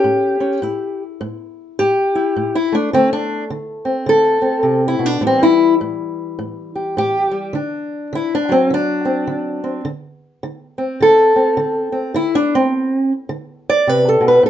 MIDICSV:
0, 0, Header, 1, 2, 480
1, 0, Start_track
1, 0, Tempo, 576369
1, 523, Time_signature, 4, 2, 24, 8
1, 12075, End_track
2, 0, Start_track
2, 0, Title_t, "Steel-string acoustic guitar"
2, 0, Program_c, 0, 25
2, 0, Note_on_c, 0, 61, 45
2, 0, Note_on_c, 0, 67, 91
2, 34, Note_on_c, 0, 45, 70
2, 326, Note_off_c, 0, 61, 0
2, 336, Note_on_c, 0, 61, 46
2, 480, Note_off_c, 0, 45, 0
2, 501, Note_off_c, 0, 61, 0
2, 516, Note_on_c, 0, 45, 73
2, 526, Note_on_c, 0, 64, 50
2, 852, Note_off_c, 0, 67, 0
2, 961, Note_off_c, 0, 45, 0
2, 1005, Note_on_c, 0, 45, 78
2, 1446, Note_off_c, 0, 45, 0
2, 1491, Note_on_c, 0, 67, 104
2, 1496, Note_on_c, 0, 45, 65
2, 1775, Note_off_c, 0, 64, 0
2, 1794, Note_on_c, 0, 64, 47
2, 1931, Note_off_c, 0, 45, 0
2, 1969, Note_on_c, 0, 45, 72
2, 2117, Note_off_c, 0, 64, 0
2, 2126, Note_off_c, 0, 67, 0
2, 2127, Note_on_c, 0, 64, 84
2, 2267, Note_on_c, 0, 57, 48
2, 2284, Note_off_c, 0, 64, 0
2, 2288, Note_on_c, 0, 62, 81
2, 2407, Note_off_c, 0, 45, 0
2, 2439, Note_off_c, 0, 57, 0
2, 2442, Note_off_c, 0, 62, 0
2, 2443, Note_on_c, 0, 50, 82
2, 2446, Note_on_c, 0, 57, 51
2, 2452, Note_on_c, 0, 60, 95
2, 2601, Note_off_c, 0, 60, 0
2, 2605, Note_on_c, 0, 62, 98
2, 2860, Note_off_c, 0, 62, 0
2, 2884, Note_off_c, 0, 50, 0
2, 2918, Note_on_c, 0, 50, 69
2, 3207, Note_on_c, 0, 60, 48
2, 3362, Note_off_c, 0, 50, 0
2, 3384, Note_on_c, 0, 50, 73
2, 3407, Note_on_c, 0, 69, 104
2, 3669, Note_off_c, 0, 60, 0
2, 3679, Note_on_c, 0, 60, 45
2, 3834, Note_off_c, 0, 50, 0
2, 3855, Note_on_c, 0, 48, 64
2, 4043, Note_off_c, 0, 69, 0
2, 4063, Note_on_c, 0, 64, 91
2, 4153, Note_off_c, 0, 48, 0
2, 4156, Note_on_c, 0, 47, 68
2, 4212, Note_off_c, 0, 60, 0
2, 4212, Note_off_c, 0, 64, 0
2, 4212, Note_on_c, 0, 62, 81
2, 4336, Note_off_c, 0, 47, 0
2, 4339, Note_on_c, 0, 45, 74
2, 4344, Note_on_c, 0, 52, 48
2, 4347, Note_off_c, 0, 57, 0
2, 4350, Note_on_c, 0, 55, 50
2, 4366, Note_off_c, 0, 62, 0
2, 4387, Note_on_c, 0, 60, 99
2, 4520, Note_on_c, 0, 64, 101
2, 4533, Note_off_c, 0, 60, 0
2, 4778, Note_off_c, 0, 64, 0
2, 4792, Note_off_c, 0, 45, 0
2, 4837, Note_on_c, 0, 45, 72
2, 5281, Note_off_c, 0, 45, 0
2, 5319, Note_on_c, 0, 45, 65
2, 5626, Note_on_c, 0, 67, 41
2, 5762, Note_off_c, 0, 45, 0
2, 5804, Note_on_c, 0, 45, 72
2, 5807, Note_off_c, 0, 67, 0
2, 5816, Note_on_c, 0, 67, 102
2, 6081, Note_off_c, 0, 55, 0
2, 6091, Note_on_c, 0, 55, 44
2, 6244, Note_off_c, 0, 45, 0
2, 6248, Note_off_c, 0, 52, 0
2, 6272, Note_on_c, 0, 50, 75
2, 6280, Note_off_c, 0, 55, 0
2, 6287, Note_on_c, 0, 62, 55
2, 6288, Note_off_c, 0, 67, 0
2, 6718, Note_off_c, 0, 50, 0
2, 6768, Note_on_c, 0, 50, 73
2, 6790, Note_on_c, 0, 64, 85
2, 6935, Note_off_c, 0, 64, 0
2, 6948, Note_off_c, 0, 62, 0
2, 6952, Note_on_c, 0, 62, 96
2, 7069, Note_on_c, 0, 54, 50
2, 7094, Note_on_c, 0, 60, 87
2, 7096, Note_off_c, 0, 62, 0
2, 7206, Note_off_c, 0, 50, 0
2, 7247, Note_off_c, 0, 60, 0
2, 7249, Note_on_c, 0, 50, 68
2, 7278, Note_on_c, 0, 62, 91
2, 7539, Note_on_c, 0, 60, 44
2, 7687, Note_off_c, 0, 50, 0
2, 7723, Note_on_c, 0, 50, 70
2, 8022, Note_off_c, 0, 60, 0
2, 8026, Note_on_c, 0, 60, 45
2, 8164, Note_off_c, 0, 50, 0
2, 8198, Note_off_c, 0, 54, 0
2, 8201, Note_on_c, 0, 50, 75
2, 8219, Note_off_c, 0, 62, 0
2, 8226, Note_off_c, 0, 60, 0
2, 8643, Note_off_c, 0, 50, 0
2, 8687, Note_on_c, 0, 50, 73
2, 8978, Note_on_c, 0, 60, 49
2, 9126, Note_off_c, 0, 50, 0
2, 9165, Note_on_c, 0, 50, 73
2, 9181, Note_on_c, 0, 69, 104
2, 9450, Note_off_c, 0, 60, 0
2, 9460, Note_on_c, 0, 60, 47
2, 9604, Note_off_c, 0, 50, 0
2, 9636, Note_on_c, 0, 50, 77
2, 9920, Note_off_c, 0, 60, 0
2, 9930, Note_on_c, 0, 60, 46
2, 10080, Note_off_c, 0, 50, 0
2, 10096, Note_off_c, 0, 60, 0
2, 10113, Note_on_c, 0, 50, 80
2, 10121, Note_off_c, 0, 69, 0
2, 10124, Note_on_c, 0, 64, 97
2, 10281, Note_off_c, 0, 64, 0
2, 10287, Note_on_c, 0, 62, 97
2, 10436, Note_off_c, 0, 50, 0
2, 10443, Note_off_c, 0, 62, 0
2, 10452, Note_on_c, 0, 60, 93
2, 10925, Note_off_c, 0, 60, 0
2, 11069, Note_on_c, 0, 50, 75
2, 11405, Note_on_c, 0, 74, 111
2, 11516, Note_off_c, 0, 50, 0
2, 11554, Note_on_c, 0, 48, 64
2, 11570, Note_off_c, 0, 74, 0
2, 11570, Note_on_c, 0, 71, 94
2, 11724, Note_off_c, 0, 71, 0
2, 11730, Note_on_c, 0, 69, 87
2, 11827, Note_off_c, 0, 48, 0
2, 11830, Note_on_c, 0, 47, 63
2, 11884, Note_off_c, 0, 69, 0
2, 11892, Note_on_c, 0, 71, 87
2, 12015, Note_off_c, 0, 47, 0
2, 12019, Note_on_c, 0, 45, 79
2, 12038, Note_off_c, 0, 71, 0
2, 12042, Note_on_c, 0, 69, 94
2, 12075, Note_off_c, 0, 45, 0
2, 12075, Note_off_c, 0, 69, 0
2, 12075, End_track
0, 0, End_of_file